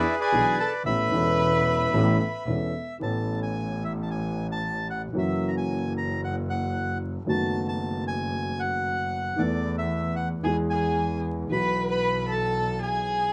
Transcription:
0.00 0.16 E4 medium
0.00 0.55 G#4 medium
0.00 0.19 B4 medium
0.00 0.15 D5 medium
0.00 0.16 E5 medium
0.21 0.57 G#4 medium
0.21 0.83 B4 medium
0.21 0.83 D5 medium
0.21 0.58 G#5 medium
0.32 0.55 B1 soft
0.32 0.55 B1 medium
0.32 0.55 B2 soft
0.32 0.55 E3 soft
0.32 0.55 B3 soft
0.32 0.55 D4 soft
0.32 0.55 G#4 soft
0.60 0.72 A4 medium
0.60 0.72 A5 medium
0.85 1.08 A1 medium
0.85 1.09 A2 soft
0.85 1.08 E3 soft
0.85 1.08 B3 soft
0.85 1.09 C#4 soft
0.85 1.09 A4 soft
0.85 2.44 B4 medium
0.85 2.18 E5 soft
0.85 2.43 B5 medium
1.11 1.88 E1 medium
1.11 1.90 E1 medium
1.11 1.90 E2 medium
1.11 1.89 E3 medium
1.11 1.89 B3 medium
1.11 1.90 C#4 medium
1.15 1.90 A4 medium
1.92 2.15 A1 medium
1.92 2.16 A1 medium
1.92 2.16 A2 medium
1.92 2.16 E3 medium
1.92 2.16 B3 medium
1.92 2.16 C#4 medium
1.92 2.16 A4 medium
2.20 2.97 E5 medium
2.46 2.70 E1 soft
2.46 2.71 E1 soft
2.46 2.70 E2 soft
2.46 2.70 E3 soft
2.46 2.70 B3 soft
2.46 2.70 C#4 soft
2.46 2.71 A4 soft
3.00 5.05 A1 medium
3.00 5.05 A2 soft
3.00 5.04 E3 soft
3.00 5.05 B3 soft
3.00 5.05 C#4 soft
3.00 5.06 A4 soft
3.00 3.40 A5 medium
3.43 3.84 G#5 medium
3.84 3.93 E5 medium
4.03 4.09 A5 medium
4.11 4.47 G#5 medium
4.52 4.88 A5 medium
4.90 5.02 F#5 medium
5.13 7.16 F#1 medium
5.13 7.16 F#2 medium
5.13 7.15 E3 soft
5.13 7.16 F#3 medium
5.13 7.16 A#3 soft
5.13 7.17 C#4 soft
5.13 7.17 F#4 medium
5.18 5.51 E5 medium
5.48 5.55 A#5 medium
5.57 5.93 G#5 medium
5.98 6.21 A#5 medium
6.24 6.35 F#5 medium
6.50 6.98 F#5 medium
7.25 9.28 F#1 medium
7.25 9.28 F#2 medium
7.25 9.27 D#3 soft
7.25 9.29 F#3 medium
7.25 9.28 A3 soft
7.25 9.29 B3 soft
7.29 9.30 F#4 medium
7.29 7.67 A5 medium
7.68 8.04 A5 medium
8.07 8.61 G#5 medium
8.60 9.42 F#5 medium
9.36 10.39 E2 medium
9.36 10.40 E2 medium
9.36 9.38 E3 soft
9.36 10.40 E3 medium
9.36 10.39 A3 soft
9.36 10.40 B3 soft
9.36 10.40 A4 soft
9.36 9.76 D5 medium
9.78 10.15 E5 medium
10.16 10.29 F#5 medium
10.43 11.46 E2 medium
10.43 11.47 E2 medium
10.43 11.47 E3 medium
10.43 11.46 G#3 soft
10.43 11.47 B3 soft
10.43 10.56 G#4 medium
10.43 11.48 G#4 medium
10.43 10.56 G#5 medium
10.70 11.21 G#4 soft
10.70 11.20 G#5 medium
11.50 13.33 B1 medium
11.50 13.33 B2 medium
11.50 13.33 E3 soft
11.50 13.33 B3 soft
11.50 11.89 B4 medium
11.50 13.33 B4 soft
11.50 11.89 B5 medium
11.90 12.28 B4 medium
11.90 12.33 B5 medium
12.29 12.80 A4 medium
12.29 12.81 A5 medium
12.82 13.33 G#4 medium
12.82 13.33 G#5 medium

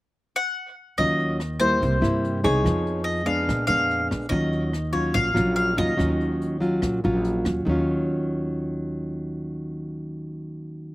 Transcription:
0.36 0.74 F#5 loud
0.98 1.78 D#2 medium
0.98 1.80 D#3 medium
0.98 1.40 F#3 medium
0.98 1.40 C#4 medium
0.98 1.40 F4 medium
0.98 1.37 D#5 medium
0.98 kick soft
0.98 closed hi-hat soft
1.20 closed hi-hat soft
1.40 cross-stick medium
1.40 closed hi-hat soft
1.60 1.99 G3 soft
1.60 1.99 A#3 medium
1.60 1.99 E4 medium
1.60 2.44 C5 medium
1.60 kick soft
1.80 2.01 C2 medium
1.80 2.62 C3 medium
1.80 kick medium
1.80 closed hi-hat soft
2.01 2.41 G2 medium
2.01 2.40 G3 medium
2.01 2.40 A#3 medium
2.01 2.40 E4 medium
2.01 cross-stick soft
2.01 closed hi-hat soft
2.24 closed hi-hat soft
2.44 2.64 C2 medium
2.44 3.24 B3 medium
2.44 3.24 D#4 medium
2.44 3.24 G#4 medium
2.44 3.04 C#5 medium
2.44 kick soft
2.44 closed hi-hat soft
2.64 3.45 F2 medium
2.64 3.25 F3 soft
2.64 kick medium
2.64 cross-stick medium
2.64 closed hi-hat soft
2.87 closed hi-hat soft
3.04 3.27 D#5 medium
3.04 closed hi-hat soft
3.26 3.65 G#3 medium
3.26 3.65 B3 medium
3.26 3.65 D4 medium
3.26 3.66 F5 medium
3.26 kick soft
3.26 closed hi-hat soft
3.47 3.68 A#1 medium
3.47 4.29 A#2 soft
3.47 kick medium
3.47 cross-stick medium
3.47 closed hi-hat soft
3.67 4.07 F2 medium
3.67 4.28 G#3 medium
3.67 4.28 B3 medium
3.67 4.28 D4 medium
3.67 4.07 F5 medium
3.67 closed hi-hat soft
3.91 closed hi-hat soft
4.11 4.31 A#1 medium
4.11 kick soft
4.11 cross-stick medium
4.11 closed hi-hat soft
4.29 5.11 D#2 medium
4.29 5.12 D#3 soft
4.29 4.72 F#3 medium
4.29 4.72 C#4 medium
4.29 4.73 F4 medium
4.29 4.92 D#5 medium
4.29 kick soft
4.29 closed hi-hat soft
4.53 closed hi-hat soft
4.73 cross-stick medium
4.73 closed hi-hat soft
4.92 5.32 F#3 medium
4.92 5.32 C#4 medium
4.92 5.32 F4 medium
4.92 5.15 C#5 medium
4.92 kick soft
4.92 closed hi-hat soft
5.13 5.34 A#1 medium
5.13 5.96 A#2 medium
5.13 5.55 F5 medium
5.13 kick medium
5.13 closed hi-hat soft
5.34 5.75 A#1 medium
5.34 5.73 F#3 medium
5.34 5.74 C#4 medium
5.34 5.74 F4 medium
5.34 cross-stick medium
5.34 closed hi-hat soft
5.56 5.76 F5 medium
5.56 closed hi-hat soft
5.77 5.97 D#2 medium
5.77 5.95 F#3 medium
5.77 5.95 C#4 medium
5.77 5.95 F4 medium
5.77 6.57 D#5 medium
5.77 kick soft
5.77 closed hi-hat soft
5.97 6.78 D#2 medium
5.97 6.79 D#3 medium
5.97 6.57 F#3 soft
5.97 6.57 C#4 soft
5.97 6.58 F4 medium
5.97 kick soft
5.97 cross-stick soft
5.97 closed hi-hat soft
6.21 closed hi-hat soft
6.41 closed hi-hat soft
6.60 6.99 F#3 medium
6.60 6.99 C#4 medium
6.60 7.00 F4 medium
6.60 kick soft
6.60 closed hi-hat soft
6.81 7.02 A#1 medium
6.81 7.63 A#2 soft
6.81 kick medium
6.81 cross-stick medium
6.81 closed hi-hat soft
7.04 7.43 A#1 medium
7.04 7.63 F#3 soft
7.04 7.63 C#4 medium
7.04 7.63 F4 medium
7.04 closed hi-hat soft
7.25 closed hi-hat soft
7.45 7.65 D#2 medium
7.45 kick soft
7.45 cross-stick medium
7.45 closed hi-hat soft
7.65 10.95 D#2 medium
7.65 10.95 D#3 medium
7.65 10.95 F#3 medium
7.69 10.95 C#4 medium
7.69 10.95 F4 medium

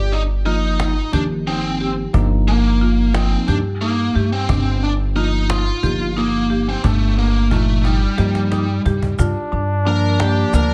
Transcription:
0.00 0.99 G1 medium
0.00 0.14 G4 medium
0.00 0.17 D5 medium
0.12 0.21 D#4 medium
0.12 cajon slap soft
0.46 0.93 F3 medium
0.46 0.93 A#3 medium
0.46 1.13 D#4 medium
0.46 0.93 D#4 medium
0.46 0.65 F4 medium
0.46 cajon slap soft
0.80 0.99 D#4 medium
0.80 cajon slap loud
1.12 2.03 G1 medium
1.12 2.07 D#3 medium
1.12 2.07 F3 medium
1.12 2.07 A#3 soft
1.12 1.22 D4 medium
1.12 1.32 G4 medium
1.12 cajon bass medium
1.47 1.94 C4 medium
1.47 1.66 D#4 medium
1.47 cajon slap soft
1.80 1.99 G4 medium
1.80 cajon slap soft
2.13 3.34 G1 medium
2.13 3.08 F3 medium
2.13 3.08 A#3 medium
2.13 2.52 D4 medium
2.13 3.08 D#4 medium
2.13 cajon bass medium
2.47 3.14 A#3 medium
2.47 cajon slap soft
2.81 3.00 F4 medium
2.81 cajon slap soft
3.14 3.61 F3 medium
3.14 3.61 A#3 medium
3.14 3.46 C4 medium
3.14 3.62 D#4 medium
3.14 3.34 D#4 medium
3.14 cajon slap loud
3.47 4.08 G2 medium
3.47 3.57 D4 loud
3.47 3.67 G4 medium
3.47 cajon bass medium
3.47 cajon slap soft
3.81 4.16 A#3 medium
3.81 4.01 D#4 medium
3.81 cajon slap soft
4.15 4.45 G2 medium
4.15 4.28 A3 medium
4.15 4.35 G4 medium
4.15 cajon slap soft
4.33 4.84 C4 medium
4.49 5.69 G1 medium
4.49 4.87 D4 medium
4.49 cajon bass loud
4.83 4.92 D4 medium
4.83 cajon slap soft
5.15 5.63 F3 medium
5.15 5.63 A#3 medium
5.15 5.50 D#4 medium
5.15 5.63 D#4 medium
5.15 5.35 F4 medium
5.15 cajon slap soft
5.50 5.69 D#4 medium
5.50 6.19 F4 medium
5.50 cajon slap loud
5.83 6.74 G1 medium
5.83 6.77 F3 medium
5.83 6.77 A#3 medium
5.83 6.78 D#4 medium
5.83 6.02 G4 medium
5.83 cajon bass medium
5.83 cajon slap soft
6.17 6.68 A#3 medium
6.17 6.36 D#4 medium
6.17 cajon slap soft
6.50 6.69 G4 medium
6.50 cajon slap soft
6.69 6.84 C4 medium
6.84 8.04 G1 loud
6.84 7.18 A3 medium
6.84 7.22 D4 medium
6.84 cajon bass medium
7.17 7.52 A#3 medium
7.17 cajon slap soft
7.51 7.98 A#2 medium
7.51 7.98 F3 medium
7.51 7.85 A3 medium
7.51 7.98 D#4 medium
7.51 7.70 F4 medium
7.51 cajon bass medium
7.51 cajon slap soft
7.84 8.82 G3 medium
7.84 8.03 D#4 medium
7.84 cajon slap medium
8.18 8.78 G2 medium
8.18 8.65 F3 medium
8.18 8.66 A#3 medium
8.18 8.66 D#4 medium
8.18 8.37 G4 medium
8.18 cajon slap medium
8.35 cajon slap medium
8.52 8.71 D#4 medium
8.52 cajon slap medium
8.85 9.15 G2 medium
8.85 9.05 G4 medium
8.85 cajon bass medium
9.02 cajon bass medium
9.19 9.34 G2 medium
9.19 10.74 D4 medium
9.19 9.38 F4 medium
9.19 cajon bass medium
9.19 shaker medium
9.52 10.43 G2 medium
9.52 9.71 D4 medium
9.52 cajon slap soft
9.85 10.52 F3 medium
9.85 10.52 A#3 medium
9.85 10.05 D4 medium
9.85 10.52 D4 medium
9.85 10.21 A#4 medium
9.85 cajon slap soft
10.20 10.39 A#3 medium
10.20 10.55 G4 medium
10.20 cajon slap loud
10.53 10.74 D2 medium
10.53 10.74 F3 medium
10.53 10.74 A#3 medium
10.53 10.74 D4 medium
10.53 10.74 A#4 medium
10.53 cajon bass medium
10.53 shaker medium

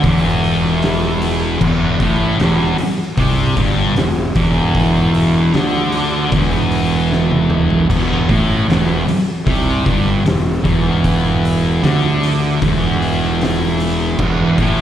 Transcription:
0.03 1.57 E1 loud
0.03 1.60 E2 loud
0.03 kick loud
0.03 open hi-hat loud
0.44 open hi-hat medium
0.65 snare soft
0.82 snare loud
0.82 open hi-hat medium
1.22 open hi-hat medium
1.61 1.98 E1 loud
1.61 1.99 E2 loud
1.61 kick medium
1.61 crash loud
2.00 2.37 A1 loud
2.00 2.38 A2 loud
2.00 kick loud
2.00 open hi-hat medium
2.39 2.76 E1 loud
2.39 2.77 E2 loud
2.39 snare loud
2.39 open hi-hat medium
2.78 muted fingered electric bass stroke soft
2.78 muted distorted electric guitar stroke medium
2.78 open hi-hat medium
3.17 3.54 C2 loud
3.17 3.56 C3 loud
3.17 kick loud
3.17 open hi-hat medium
3.57 3.94 G1 loud
3.57 3.95 G2 loud
3.57 kick loud
3.57 open hi-hat medium
3.96 4.33 E1 medium
3.96 4.28 E2 medium
3.96 snare loud
3.96 open hi-hat medium
4.35 5.50 E1 medium
4.35 5.52 E2 loud
4.35 kick loud
4.35 open hi-hat medium
4.74 kick loud
4.74 open hi-hat medium
5.14 open hi-hat medium
5.53 6.28 D2 loud
5.53 6.31 D3 loud
5.53 snare loud
5.53 open hi-hat medium
5.92 open hi-hat medium
6.32 7.86 E1 loud
6.32 7.88 E2 loud
6.32 kick loud
6.32 open hi-hat loud
6.71 open hi-hat medium
7.12 snare medium
7.31 high tom medium
7.50 mid tom loud
7.70 floor tom loud
7.89 8.26 E1 loud
7.89 8.28 E2 loud
7.89 kick loud
7.89 crash loud
8.29 8.66 A1 loud
8.29 8.67 A2 loud
8.29 kick loud
8.29 open hi-hat medium
8.68 9.05 E1 loud
8.68 9.06 E2 loud
8.68 snare loud
8.68 open hi-hat medium
9.08 muted distorted electric guitar stroke medium
9.08 muted fingered electric bass stroke soft
9.08 snare soft
9.08 open hi-hat medium
9.46 9.83 C2 loud
9.46 9.85 C3 loud
9.46 kick loud
9.46 open hi-hat medium
9.86 10.23 G1 loud
9.86 10.25 G2 loud
9.86 kick loud
9.86 open hi-hat medium
10.25 10.62 E1 medium
10.25 10.57 E2 medium
10.25 snare loud
10.25 open hi-hat medium
10.64 11.79 E1 medium
10.64 11.81 E2 loud
10.64 kick loud
10.64 open hi-hat medium
11.04 kick loud
11.04 open hi-hat medium
11.45 open hi-hat medium
11.83 12.58 D2 loud
11.83 12.60 D3 loud
11.83 snare loud
11.83 open hi-hat medium
12.23 open hi-hat medium
12.61 14.15 E1 loud
12.61 14.18 E2 loud
12.61 kick loud
12.61 open hi-hat medium
13.02 open hi-hat medium
13.24 snare soft
13.41 snare loud
13.41 open hi-hat medium
13.80 open hi-hat medium
14.19 14.55 E1 loud
14.19 14.57 E2 loud
14.19 kick loud
14.19 crash loud
14.58 14.81 A1 loud
14.58 14.81 A2 loud
14.58 kick loud
14.58 open hi-hat medium

